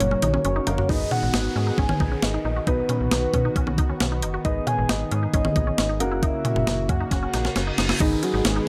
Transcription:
Already playing: C#3 A#3 C#4 F#4 A#4 C#5
0.00 F#1 C#4, closed hi-hat, high tom
0.11 C#4, high tom
0.22 A#1 D#4, closed hi-hat, mid tom
0.34 C#4, mid tom
0.45 F#1 C#4 C#5, closed hi-hat
0.56 D#4
0.67 F#1 A#3 C#4 D#4 F#4 A#4, closed hi-hat, floor tom
0.78 F#4, floor tom
0.89 G#1 D#3 B3 D#4 G#4 B4 D#5, kick, downlifter
1.11 C#4 F#5, mid tom
1.23 G#1
1.34 G#1 D#4, snare
1.56 G#2 C#4
1.67 D#4
1.78 G#1 C#4 G#5, kick
1.89 C#4, mid tom
2.00 A#1 D#4, kick
2.12 C#4
2.22 G#1 C#4 D#5, snare
2.34 D#4
2.45 A#1 D#4
2.56 F#4
2.67 B1 D#3 B3 D#4 F#4 B4, kick, closed hi-hat
2.89 C#4, closed hi-hat, mid tom
3.01 B1
3.11 B1 D#4, snare, closed hi-hat
3.34 B2 C#4, kick, closed hi-hat
3.45 D#4
3.56 B1 C#4, kick, closed hi-hat
3.67 C#4, mid tom
3.78 C#2 D#4, kick, closed hi-hat
3.89 C#4
4.00 B1 C#4, snare, closed hi-hat
4.12 D#4
4.22 F#1 D#4, closed hi-hat
4.34 F#4
4.45 G#1 B3 D#4 G#4 B4 D#5, kick, closed hi-hat
4.67 C#4 G#5, closed hi-hat, mid tom
4.78 G#1
4.89 G#1 D#4 D#5, snare, closed hi-hat
5.11 G#2 C#4, closed hi-hat
5.23 D#4
5.33 G#1 C#4 D#5, kick, closed hi-hat
5.45 C#4, mid tom
5.56 A#1 D#4, kick, closed hi-hat
5.67 C#4
5.78 G#1 C#4, snare, closed hi-hat
5.89 D#4
6.00 F#1 C#3 A#3 C#4 D#4 F#4 A#4 F#5, closed hi-hat
6.11 E4
6.22 D#4 E5, kick, closed hi-hat
6.45 C#4, closed hi-hat, mid tom
6.56 F#1, mid tom
6.67 F#1 D#4, snare, closed hi-hat
6.89 F#2 C#4 F#5, kick, closed hi-hat
7.00 D#4
7.11 F#1 C#4 F#5, kick, snare, closed hi-hat, reverse cymbal
7.23 C#4
7.34 A#1 D#4, snare, closed hi-hat
7.45 C#4, snare
7.56 F#1 C#4, snare, closed hi-hat
7.67 D#4
7.78 F#1 D#4, snare, closed hi-hat
7.89 E4, snare
8.00 G#1 D#3 B3 D#4 G#4 B4, kick, closed hi-hat, downlifter
8.23 C#4 F#4, closed hi-hat
8.34 G#1 D#4
8.45 G#1 C#4 G#4, snare, closed hi-hat
8.56 D#4

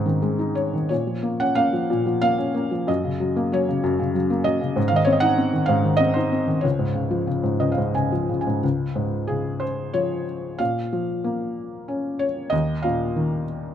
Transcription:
Already playing: G#2 C3 D#3 C4 D#4 D#5
0.06 D#3
0.22 G#3
0.39 D#4
0.55 C#5
0.73 D#3
0.89 A#2 C#5
1.07 F3
1.23 A#3
1.40 C#4 F#5
1.55 A#3 F5
1.73 F3
1.90 A#2
2.06 F3
2.21 A#3 F5
2.38 C#4
2.54 A#3
2.71 F3
2.87 F#2 D#5
3.04 C#3
3.20 F#3
3.36 A#3
3.52 F#3 C#5
3.69 C#3
3.83 F#2
3.99 C#3
4.15 F#3
4.30 A#3
4.44 F#3 D#5
4.61 C#3
4.76 G#2
4.88 D#3 F5
4.96 D#5
5.05 C4 C#5
5.12 D#5
5.20 D#4 F#5
5.38 C4
5.53 D#3
5.66 G#2 F5
5.84 D#3
5.97 C4 D#5
6.14 D#4 C5
6.32 C4
6.47 D#3
6.61 C#2 C#5
6.79 G#2
6.95 C#3
7.11 F3
7.27 C#3
7.43 G#2
7.60 C#2 D#5
7.72 F5
7.78 G#2
7.95 C#3 G#5
8.12 F3
8.29 C#3
8.41 G#5
8.47 G#2
8.64 C#2
8.96 G#2
9.27 C#3 G#4
9.60 C5
9.94 F3 C#5
10.59 A#2 F5
10.93 F3
11.24 A#3
11.88 C#4
12.19 C#5
12.50 D#2 D#5
12.82 A#2 F5
13.16 D#3

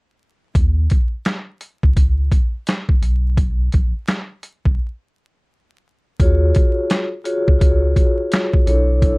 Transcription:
0.55 D#2, kick, closed hi-hat
0.90 kick, closed hi-hat
1.25 snare, closed hi-hat
1.61 closed hi-hat
1.83 C#2, kick
1.97 C#2, kick, closed hi-hat
2.32 kick, closed hi-hat
2.67 snare, closed hi-hat
2.89 kick
3.02 B1, closed hi-hat
3.37 kick, closed hi-hat
3.72 A#1, kick, closed hi-hat
4.08 snare, closed hi-hat
4.43 closed hi-hat
4.65 B1, kick
6.20 D#2 F4 F#4 G#4 C#5, kick, closed hi-hat
6.55 kick, closed hi-hat
6.90 snare, closed hi-hat
7.24 F4 F#4 G#4 C#5, closed hi-hat
7.48 C#2, kick
7.59 C#2 F4 F#4 G#4 C#5, kick, closed hi-hat
7.96 kick, closed hi-hat
8.32 snare, closed hi-hat
8.53 kick
8.66 B1 D4 E4 A4 C#5, closed hi-hat
9.02 D4 E4 A4 C#5, kick, closed hi-hat

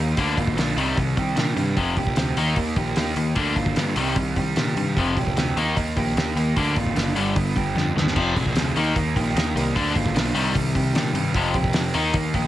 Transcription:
Already playing: D#2 D#3 A#3 D#4 G4
0.00 A#3
0.17 D2 D3 A#3 D4, kick, open hi-hat
0.37 G#1 D3 A#3 F4, kick, open hi-hat
0.47 kick
0.56 A#1 D3 A#3 D4, snare, open hi-hat
0.76 C2 C3 D#3 G3, open hi-hat
0.97 C2 C3 D#3 G3, kick, open hi-hat
1.17 C2 C3 D#3 G4, kick, open hi-hat
1.36 A#2 C3 D#3 D4, snare, open hi-hat
1.56 G2 C3 D#3 G3, open hi-hat
1.76 F1 F2 C3 F3, kick, open hi-hat
1.96 A#1 F2 C3 G4, kick, open hi-hat
2.07 kick
2.16 D2 F2 C3 C4, snare, open hi-hat
2.37 D#2 D#3 A#3 D#4, open hi-hat
2.56 D#2 D#3 A#3, kick, open hi-hat
2.76 A#1 D#3 A#3 G4, kick, open hi-hat
2.96 D#2 D#3 A#3 D#4, snare, open hi-hat
3.16 D#2 D#3 A#3, open hi-hat
3.36 D2 D3 A#3 D4, kick, open hi-hat
3.56 G#1 D3 A#3 F4, kick, open hi-hat
3.66 kick
3.76 G2 D3 A#3 D4, snare, open hi-hat
3.96 C2 C3 D#3 G3, open hi-hat
4.16 C2 C3 D#3 G3, kick, open hi-hat
4.36 C2 C3 D#3 G4, kick, open hi-hat
4.56 A#2 C3 D#3 D4, snare, open hi-hat
4.76 G2 C3 D#3 G3, open hi-hat
4.97 F1 F2 C3 F3, kick, open hi-hat
5.17 A#1 F2 C3 G4, kick, open hi-hat
5.27 kick
5.35 D2 F2 C3 C4, snare, open hi-hat
5.56 D#2 D#3 A#3 D#4, open hi-hat
5.77 D#2 D#3 A#3, kick, open hi-hat
5.97 A#1 D#3 A#3 G4, kick, open hi-hat
6.16 D#2 D#3 A#3 D#4, snare, open hi-hat
6.35 D#2 D#3 A#3, open hi-hat
6.56 D2 D3 A#3 D4, kick, open hi-hat
6.76 G#1 D3 A#3 F4, kick, open hi-hat
6.87 kick
6.95 F#1 D3 A#3 D4, snare, open hi-hat
7.15 G1 G2 D3 G3, open hi-hat
7.35 G1 G2 D3 B3, kick, open hi-hat
7.56 G1 G2 D3 G4, kick, open hi-hat
7.75 F2 G2 D3 D4, snare
7.96 D#2 G2 D3 B3, snare
8.07 snare
8.15 F1 F2 C3 F3, kick, crash
8.36 A#1 F2 C3 G#4, kick, open hi-hat
8.46 kick
8.54 D2 F2 C3 C4, snare, open hi-hat
8.76 D#2 D#3 A#3 D#4, open hi-hat
8.96 D#2 D#3 A#3, kick, open hi-hat
9.16 A#1 D#3 A#3 G4, kick, open hi-hat
9.35 D#2 D#3 A#3 D#4, snare, open hi-hat
9.55 C2 D#3 A#3, open hi-hat
9.75 D2 D3 A#3 D4, kick, open hi-hat
9.95 G#1 D3 A#3 F4, kick, open hi-hat
10.06 kick
10.15 B1 D3 A#3 D4, snare, open hi-hat
10.34 C2 C3 D#3 G3, open hi-hat
10.55 C2 C3 D#3 G3, kick, open hi-hat
10.75 C2 C3 D#3 G4, kick, open hi-hat
10.94 A#2 C3 D#3 D4, snare, open hi-hat
11.13 G2 C3 D#3 G3, open hi-hat
11.34 F1 F2 C3 F3, kick, open hi-hat
11.54 A#1 F2 C3 G4, kick, open hi-hat
11.64 kick
11.73 F2 C3 C4, snare, open hi-hat
11.94 D#2 D#3 A#3 D#4, open hi-hat
12.13 D#2 D#3 A#3, kick, open hi-hat
12.34 A#1 D#3 A#3 G4, kick, open hi-hat

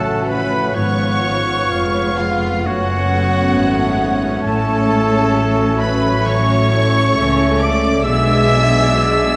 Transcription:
Already playing: A1 F#2 A2 C#3 F#3 A3 C#4 F#4 A4 C#5 F#5 A5
0.05 C#6
0.28 F3 B4 F#5 B5
0.52 C#5
0.75 G#1 G#2 B3 F4 C#5 C#6
1.00 C#4
1.23 B4
1.71 F1 F2 G#3 F4 F5
1.96 B5
2.18 G#3 F4 F5
2.44 B4
2.64 F#1 F#2 A3 C#4 F#4 C#5 F#5
2.90 C#4
3.11 B3 A4
3.34 C#5
3.55 G#1 G#2 A3 F#5
3.78 A5
4.00 F#5
4.22 A4
4.43 A1 A2 A3 C#4 A4 A5
4.67 C#4
4.89 G#3 A4
5.11 C#5
5.34 F#3 E5
5.57 A5
5.79 B4 E5 B5
6.03 A4
6.26 E3 A3 C#4 C#5 C#6
6.50 C#4
6.73 E4 A4
7.17 C#2 C#3 E3 A4 E5
7.40 A5
7.60 A3 D5 E5 D6
7.83 A4
8.04 B1 B2 G#3 D4 G#4 D5 E5 E6
8.27 D4
8.49 F#3 G#4
8.73 D5
8.94 G#3 E5
9.18 G#5

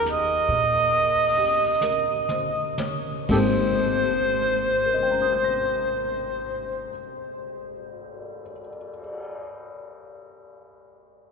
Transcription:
Already playing: D#2 D#3 A#3 C#4 D#4 F4
0.06 snare
0.11 D#5
0.47 A#2, brush sweep
1.38 G4
1.81 A#4, hi-hat pedal, mid tom
2.29 C5, mid tom
2.78 C#5, mid tom
3.29 G#1 G#2 G#3 A#3 C4 G4 A4 C5, kick, ride
4.35 cymbal swell
4.86 A#4
4.94 D#5
5.03 G5
5.11 A#5
5.22 D#6
5.33 G6
5.44 A#6

